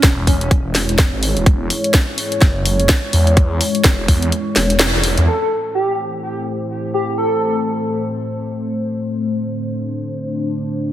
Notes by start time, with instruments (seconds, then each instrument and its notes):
Already playing: analog synth pad G#3 E4 C#5
0.03 detuned saw bass E1, kick, snare, closed hi-hat
0.27 detuned saw bass E1, digital synth lead C#4, kick, open hi-hat
0.41 digital synth lead C#4, closed hi-hat
0.51 kick, closed hi-hat
0.65 detuned saw bass E1
0.75 snare, open hi-hat
0.89 detuned saw bass E1, closed hi-hat
0.98 kick, snare, closed hi-hat
1.13 detuned saw bass G#1
1.23 open hi-hat
1.36 detuned saw bass E1, closed hi-hat
1.46 detuned saw bass E1, kick, closed hi-hat
1.70 open hi-hat
1.84 closed hi-hat
1.94 kick, snare, closed hi-hat
2.18 open hi-hat
2.32 closed hi-hat
2.41 detuned saw bass F#1, kick, snare, closed hi-hat
2.65 open hi-hat
2.80 closed hi-hat
2.89 kick, snare, closed hi-hat
3.13 detuned saw bass E2, open hi-hat
3.27 closed hi-hat
3.37 kick, closed hi-hat
3.61 open hi-hat
3.75 closed hi-hat
3.84 detuned saw bass E1, kick, snare, closed hi-hat
4.08 detuned saw bass E2, kick, open hi-hat
4.22 closed hi-hat
4.32 closed hi-hat
4.56 detuned saw bass E1, snare, open hi-hat
4.70 closed hi-hat
4.79 snare, closed hi-hat
4.94 detuned saw bass E1
5.04 open hi-hat
5.18 detuned saw bass E2, closed hi-hat
5.27 analog synth pad A3 E4 C5, digital synth lead A4
5.41 digital synth lead A4
5.75 digital synth lead G4
6.94 digital synth lead G4
7.18 digital synth lead A4
9.08 analog synth pad D4